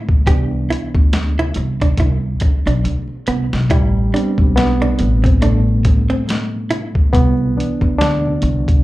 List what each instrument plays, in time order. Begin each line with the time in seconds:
Already playing: reed electric piano A2 G3 G#3 A3 E4
0.09 kick, high conga
0.27 upright bass C2, reed electric piano E3 B3 D4, hollow-body jazz guitar G4, kick, closed hi-hat
0.51 muted conga
0.70 hollow-body jazz guitar E4, closed hi-hat
0.95 upright bass D2, kick
1.13 snare, closed hi-hat, high conga
1.39 hollow-body jazz guitar E4, low conga
1.54 upright bass C2, muted hollow-body jazz guitar stroke, closed hi-hat
1.81 hollow-body jazz guitar D4, kick, closed hi-hat
1.97 upright bass C2, hollow-body jazz guitar E4, kick, closed hi-hat, muted conga, low conga
2.40 muted upright bass stroke, muted hollow-body jazz guitar stroke, kick, closed hi-hat, high conga
2.66 upright bass B1, hollow-body jazz guitar D4, closed hi-hat
2.84 upright bass D2, closed hi-hat, high conga
3.08 muted conga
3.27 upright bass C2, hollow-body jazz guitar B3, closed hi-hat, low conga
3.52 upright bass B1, snare, high conga
3.70 upright bass A1, reed electric piano G3 G4, hollow-body jazz guitar E4, kick, closed hi-hat
4.14 reed electric piano G3 B3 C4 D4, hollow-body jazz guitar D4, closed hi-hat
4.38 upright bass B1, kick
4.56 reed electric piano B2 B3, snare, closed hi-hat, high conga
4.82 hollow-body jazz guitar D4, low conga
4.99 upright bass A1, muted hollow-body jazz guitar stroke, closed hi-hat
5.24 hollow-body jazz guitar C4, kick, closed hi-hat
5.42 reed electric piano A2 A3, hollow-body jazz guitar D4, closed hi-hat, low conga
5.68 muted conga
5.85 muted hollow-body jazz guitar stroke, kick, closed hi-hat, high conga
6.10 hollow-body jazz guitar C4
6.28 snare, closed hi-hat, muted conga, high conga
6.51 muted conga
6.70 hollow-body jazz guitar E4, closed hi-hat, low conga
6.95 kick, high conga
7.13 upright bass C2, reed electric piano B2 B3, kick, closed hi-hat
7.37 muted conga
7.56 reed electric piano E3 B3 D4
7.60 closed hi-hat
7.81 upright bass D2, kick
7.99 reed electric piano D3 D4, snare, closed hi-hat, high conga
8.25 muted conga, low conga
8.42 upright bass C2, closed hi-hat
8.68 kick, closed hi-hat